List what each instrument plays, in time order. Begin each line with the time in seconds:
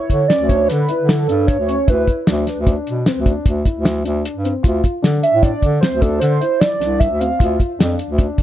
Already playing: grand piano E4, analog synth lead C#5
0.10 bass clarinet D3, kick, closed hi-hat
0.28 grand piano C#4, analog synth lead D5, snare, closed hi-hat
0.39 bass clarinet D2
0.49 grand piano D4, analog synth lead C#5, kick, closed hi-hat
0.68 bass clarinet D3, analog synth lead B4, snare, closed hi-hat
0.89 grand piano E4, closed hi-hat
0.99 bass clarinet D3
1.09 analog synth lead A4, snare, closed hi-hat
1.28 bass clarinet G2, grand piano D4, closed hi-hat
1.47 analog synth lead C#5, kick, closed hi-hat
1.59 bass clarinet D2
1.68 grand piano C#4, closed hi-hat
1.87 bass clarinet D2, grand piano E4, analog synth lead B4, kick, closed hi-hat
2.08 kick, closed hi-hat
2.27 bass clarinet D2, grand piano D4, snare, closed hi-hat
2.47 snare, closed hi-hat
2.58 bass clarinet D2
2.66 grand piano D4, kick, closed hi-hat
2.87 bass clarinet B2, closed hi-hat
3.06 grand piano C4, snare, closed hi-hat
3.18 bass clarinet D2
3.26 grand piano D4, kick, closed hi-hat
3.46 bass clarinet D2, kick, closed hi-hat
3.65 grand piano E4, kick, closed hi-hat
3.76 bass clarinet D2
3.85 snare, closed hi-hat
4.04 bass clarinet D2, grand piano D4, closed hi-hat
4.25 closed hi-hat
4.35 bass clarinet G2
4.44 grand piano C4, closed hi-hat
4.63 bass clarinet D2, grand piano F4, kick, closed hi-hat
4.84 kick, closed hi-hat
5.02 bass clarinet D3, grand piano D4, snare, closed hi-hat
5.23 analog synth lead E5, closed hi-hat
5.33 bass clarinet A2
5.42 grand piano D4, analog synth lead D5, kick, closed hi-hat
5.62 bass clarinet D3, kick, closed hi-hat
5.81 grand piano C4, analog synth lead C5, snare, closed hi-hat
5.92 bass clarinet D2
6.01 grand piano D4, analog synth lead A4, kick, closed hi-hat
6.20 bass clarinet D3, analog synth lead C5, closed hi-hat
6.40 grand piano E4, closed hi-hat
6.60 analog synth lead D5, snare, closed hi-hat
6.80 bass clarinet C2, grand piano D4, snare, closed hi-hat
7.00 analog synth lead E5, kick, closed hi-hat
7.10 bass clarinet D2
7.20 grand piano C4, analog synth lead F5, closed hi-hat
7.39 bass clarinet D2, grand piano F4, kick, closed hi-hat
7.60 kick, closed hi-hat
7.79 bass clarinet F2, grand piano D4, snare, closed hi-hat
7.99 closed hi-hat
8.09 bass clarinet D2
8.18 grand piano D4, kick, closed hi-hat
8.38 bass clarinet D3, kick, closed hi-hat